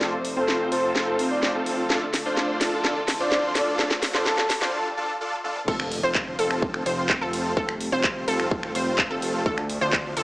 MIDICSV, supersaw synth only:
0, 0, Header, 1, 2, 480
1, 0, Start_track
1, 0, Tempo, 472441
1, 10, Time_signature, 4, 2, 24, 8
1, 10394, End_track
2, 0, Start_track
2, 0, Title_t, "Supersaw synth"
2, 0, Program_c, 0, 81
2, 9, Note_on_c, 0, 60, 88
2, 10, Note_on_c, 0, 65, 82
2, 10, Note_on_c, 0, 69, 97
2, 156, Note_off_c, 0, 60, 0
2, 156, Note_off_c, 0, 65, 0
2, 156, Note_off_c, 0, 69, 0
2, 370, Note_on_c, 0, 60, 87
2, 370, Note_on_c, 0, 65, 78
2, 370, Note_on_c, 0, 72, 95
2, 701, Note_off_c, 0, 60, 0
2, 701, Note_off_c, 0, 65, 0
2, 701, Note_off_c, 0, 72, 0
2, 730, Note_on_c, 0, 60, 89
2, 730, Note_on_c, 0, 65, 83
2, 730, Note_on_c, 0, 69, 101
2, 1181, Note_off_c, 0, 60, 0
2, 1181, Note_off_c, 0, 65, 0
2, 1181, Note_off_c, 0, 69, 0
2, 1210, Note_on_c, 0, 60, 76
2, 1210, Note_on_c, 0, 65, 68
2, 1210, Note_on_c, 0, 72, 83
2, 1541, Note_off_c, 0, 60, 0
2, 1541, Note_off_c, 0, 65, 0
2, 1541, Note_off_c, 0, 72, 0
2, 1570, Note_on_c, 0, 60, 80
2, 1570, Note_on_c, 0, 65, 75
2, 1570, Note_on_c, 0, 69, 91
2, 1901, Note_off_c, 0, 60, 0
2, 1901, Note_off_c, 0, 65, 0
2, 1901, Note_off_c, 0, 69, 0
2, 1930, Note_on_c, 0, 62, 81
2, 1930, Note_on_c, 0, 65, 71
2, 1930, Note_on_c, 0, 69, 90
2, 2076, Note_off_c, 0, 62, 0
2, 2076, Note_off_c, 0, 65, 0
2, 2076, Note_off_c, 0, 69, 0
2, 2290, Note_on_c, 0, 62, 80
2, 2290, Note_on_c, 0, 65, 74
2, 2290, Note_on_c, 0, 72, 88
2, 2621, Note_off_c, 0, 62, 0
2, 2621, Note_off_c, 0, 65, 0
2, 2621, Note_off_c, 0, 72, 0
2, 2650, Note_on_c, 0, 62, 81
2, 2650, Note_on_c, 0, 65, 75
2, 2650, Note_on_c, 0, 69, 93
2, 2871, Note_off_c, 0, 62, 0
2, 2871, Note_off_c, 0, 65, 0
2, 2871, Note_off_c, 0, 69, 0
2, 2890, Note_on_c, 0, 62, 81
2, 2890, Note_on_c, 0, 65, 74
2, 2891, Note_on_c, 0, 69, 89
2, 3036, Note_off_c, 0, 62, 0
2, 3036, Note_off_c, 0, 65, 0
2, 3036, Note_off_c, 0, 69, 0
2, 3250, Note_on_c, 0, 62, 79
2, 3250, Note_on_c, 0, 65, 76
2, 3250, Note_on_c, 0, 72, 91
2, 3582, Note_off_c, 0, 62, 0
2, 3582, Note_off_c, 0, 65, 0
2, 3582, Note_off_c, 0, 72, 0
2, 3610, Note_on_c, 0, 62, 84
2, 3610, Note_on_c, 0, 65, 81
2, 3610, Note_on_c, 0, 69, 95
2, 3831, Note_off_c, 0, 62, 0
2, 3831, Note_off_c, 0, 65, 0
2, 3831, Note_off_c, 0, 69, 0
2, 3850, Note_on_c, 0, 62, 83
2, 3850, Note_on_c, 0, 65, 78
2, 3850, Note_on_c, 0, 69, 94
2, 3996, Note_off_c, 0, 62, 0
2, 3996, Note_off_c, 0, 65, 0
2, 3996, Note_off_c, 0, 69, 0
2, 4210, Note_on_c, 0, 62, 84
2, 4210, Note_on_c, 0, 65, 79
2, 4210, Note_on_c, 0, 72, 94
2, 4311, Note_off_c, 0, 62, 0
2, 4311, Note_off_c, 0, 65, 0
2, 4311, Note_off_c, 0, 72, 0
2, 4330, Note_on_c, 0, 62, 89
2, 4330, Note_on_c, 0, 65, 79
2, 4330, Note_on_c, 0, 69, 100
2, 4476, Note_off_c, 0, 62, 0
2, 4476, Note_off_c, 0, 65, 0
2, 4476, Note_off_c, 0, 69, 0
2, 4690, Note_on_c, 0, 62, 86
2, 4690, Note_on_c, 0, 65, 80
2, 4690, Note_on_c, 0, 72, 97
2, 4791, Note_off_c, 0, 62, 0
2, 4791, Note_off_c, 0, 65, 0
2, 4791, Note_off_c, 0, 72, 0
2, 4810, Note_on_c, 0, 62, 86
2, 4810, Note_on_c, 0, 65, 79
2, 4810, Note_on_c, 0, 69, 95
2, 4956, Note_off_c, 0, 62, 0
2, 4956, Note_off_c, 0, 65, 0
2, 4956, Note_off_c, 0, 69, 0
2, 5050, Note_on_c, 0, 62, 87
2, 5050, Note_on_c, 0, 65, 80
2, 5050, Note_on_c, 0, 69, 95
2, 5196, Note_off_c, 0, 62, 0
2, 5196, Note_off_c, 0, 65, 0
2, 5196, Note_off_c, 0, 69, 0
2, 5290, Note_on_c, 0, 62, 88
2, 5290, Note_on_c, 0, 65, 84
2, 5290, Note_on_c, 0, 69, 97
2, 5436, Note_off_c, 0, 62, 0
2, 5436, Note_off_c, 0, 65, 0
2, 5436, Note_off_c, 0, 69, 0
2, 5530, Note_on_c, 0, 62, 87
2, 5530, Note_on_c, 0, 65, 83
2, 5530, Note_on_c, 0, 69, 97
2, 5676, Note_off_c, 0, 62, 0
2, 5676, Note_off_c, 0, 65, 0
2, 5676, Note_off_c, 0, 69, 0
2, 5770, Note_on_c, 0, 60, 89
2, 5770, Note_on_c, 0, 65, 81
2, 5770, Note_on_c, 0, 69, 98
2, 5916, Note_off_c, 0, 60, 0
2, 5916, Note_off_c, 0, 65, 0
2, 5916, Note_off_c, 0, 69, 0
2, 6130, Note_on_c, 0, 60, 87
2, 6130, Note_on_c, 0, 65, 79
2, 6130, Note_on_c, 0, 72, 96
2, 6461, Note_off_c, 0, 60, 0
2, 6461, Note_off_c, 0, 65, 0
2, 6461, Note_off_c, 0, 72, 0
2, 6490, Note_on_c, 0, 60, 90
2, 6490, Note_on_c, 0, 65, 84
2, 6490, Note_on_c, 0, 69, 102
2, 6941, Note_off_c, 0, 60, 0
2, 6942, Note_off_c, 0, 65, 0
2, 6942, Note_off_c, 0, 69, 0
2, 6970, Note_on_c, 0, 60, 78
2, 6970, Note_on_c, 0, 65, 70
2, 6970, Note_on_c, 0, 72, 83
2, 7301, Note_off_c, 0, 60, 0
2, 7301, Note_off_c, 0, 65, 0
2, 7301, Note_off_c, 0, 72, 0
2, 7330, Note_on_c, 0, 60, 82
2, 7330, Note_on_c, 0, 65, 74
2, 7330, Note_on_c, 0, 69, 89
2, 7661, Note_off_c, 0, 69, 0
2, 7662, Note_off_c, 0, 60, 0
2, 7662, Note_off_c, 0, 65, 0
2, 7690, Note_on_c, 0, 60, 86
2, 7690, Note_on_c, 0, 65, 82
2, 7690, Note_on_c, 0, 69, 99
2, 7836, Note_off_c, 0, 60, 0
2, 7836, Note_off_c, 0, 65, 0
2, 7836, Note_off_c, 0, 69, 0
2, 8050, Note_on_c, 0, 60, 89
2, 8050, Note_on_c, 0, 65, 79
2, 8050, Note_on_c, 0, 72, 97
2, 8382, Note_off_c, 0, 60, 0
2, 8382, Note_off_c, 0, 65, 0
2, 8382, Note_off_c, 0, 72, 0
2, 8410, Note_on_c, 0, 60, 94
2, 8410, Note_on_c, 0, 65, 85
2, 8410, Note_on_c, 0, 69, 100
2, 8861, Note_off_c, 0, 60, 0
2, 8861, Note_off_c, 0, 65, 0
2, 8861, Note_off_c, 0, 69, 0
2, 8890, Note_on_c, 0, 60, 74
2, 8890, Note_on_c, 0, 65, 70
2, 8890, Note_on_c, 0, 72, 86
2, 9221, Note_off_c, 0, 60, 0
2, 9221, Note_off_c, 0, 65, 0
2, 9221, Note_off_c, 0, 72, 0
2, 9250, Note_on_c, 0, 60, 81
2, 9250, Note_on_c, 0, 65, 74
2, 9250, Note_on_c, 0, 69, 89
2, 9581, Note_off_c, 0, 60, 0
2, 9581, Note_off_c, 0, 65, 0
2, 9581, Note_off_c, 0, 69, 0
2, 9610, Note_on_c, 0, 62, 88
2, 9610, Note_on_c, 0, 65, 80
2, 9610, Note_on_c, 0, 69, 97
2, 9756, Note_off_c, 0, 62, 0
2, 9756, Note_off_c, 0, 65, 0
2, 9756, Note_off_c, 0, 69, 0
2, 9970, Note_on_c, 0, 62, 88
2, 9970, Note_on_c, 0, 65, 81
2, 9970, Note_on_c, 0, 72, 96
2, 10301, Note_off_c, 0, 62, 0
2, 10301, Note_off_c, 0, 65, 0
2, 10302, Note_off_c, 0, 72, 0
2, 10330, Note_on_c, 0, 62, 91
2, 10330, Note_on_c, 0, 65, 83
2, 10330, Note_on_c, 0, 69, 100
2, 10394, Note_off_c, 0, 62, 0
2, 10394, Note_off_c, 0, 65, 0
2, 10394, Note_off_c, 0, 69, 0
2, 10394, End_track
0, 0, End_of_file